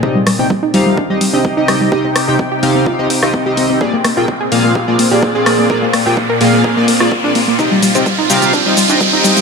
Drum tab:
HH |--o---o---o---o-|--o---o---o---o-|--o---o---o---o-|--o---o---o---o-|
SH |----------------|----------------|----------------|----------------|
SD |--r-----------r-|--r--------r----|--r-----------r-|--r--------r----|
BD |o---o---o---o---|o---o---o---o---|o---o---o---o---|o---o---o---o---|

HH |x-oxx-oxx-oxx-ox|
SH |x-xxx-xxx-xxx-xx|
SD |----------------|
BD |o---o---o---o---|